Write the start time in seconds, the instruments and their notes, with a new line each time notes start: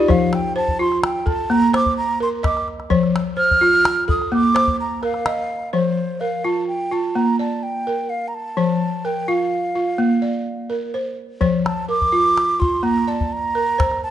Already playing: balafon G4, flute D5
0.08 balafon F3 C5, flute F5, calabash thump, calabash click
0.33 flute G5, calabash click
0.56 balafon C5, flute A5
0.68 calabash thump
0.79 balafon F4, flute C6
0.92 calabash click
1.04 flute G5, calabash click
1.26 balafon A4, flute A5, calabash thump, calabash click
1.50 balafon A#3, flute A#5
1.62 calabash click
1.73 balafon C5, flute D6, calabash click
1.86 calabash thump
1.97 flute A#5
2.20 balafon A#4, flute C6
2.43 balafon D#5, flute D6, calabash thump, calabash click
2.57 calabash click
2.68 calabash click
2.80 calabash click
2.90 balafon F3 C5, calabash thump, calabash click
3.03 calabash click
3.16 calabash click
3.37 balafon C5, flute F6
3.51 calabash thump
3.61 balafon F4, calabash click
3.74 calabash click
3.85 calabash click
4.08 balafon A4, flute D#6, calabash thump, calabash click
4.22 calabash click
4.32 balafon A#3, flute D6, calabash click
4.55 balafon C5, calabash click
4.68 calabash thump
4.81 flute A#5
5.03 balafon A#4, flute F5, calabash click
5.14 calabash click
5.26 balafon D#5, calabash click
5.73 balafon F3 C5, flute C5
6.20 balafon A#4, flute F5
6.44 balafon F4, flute A5
6.68 flute G5
6.92 balafon F4, flute A5
7.15 balafon A#3, flute A#5
7.39 balafon D5, flute A5
7.63 flute G5
7.87 balafon A#4
8.10 flute F5
8.28 flute A#5
8.35 flute A5
8.57 balafon F3 C5
9.05 balafon A#4, flute G5
9.28 balafon F4, flute F5
9.75 balafon F4
9.98 balafon A#3
10.22 balafon D5
10.70 balafon A#4
10.94 balafon C5
11.41 balafon F3 C5, calabash thump, calabash click
11.66 flute A5, calabash click
11.89 balafon A#4, flute D6
12.02 calabash thump
12.12 balafon F4
12.26 calabash click
12.37 calabash click
12.60 balafon F4, flute C6, calabash thump, calabash click
12.83 balafon A#3, flute A#5
12.98 calabash click
13.08 balafon D5, flute A5
13.21 calabash thump
13.33 flute A#5
13.55 balafon A#4
13.78 balafon C5, calabash thump, calabash click
13.91 calabash click
14.04 flute A5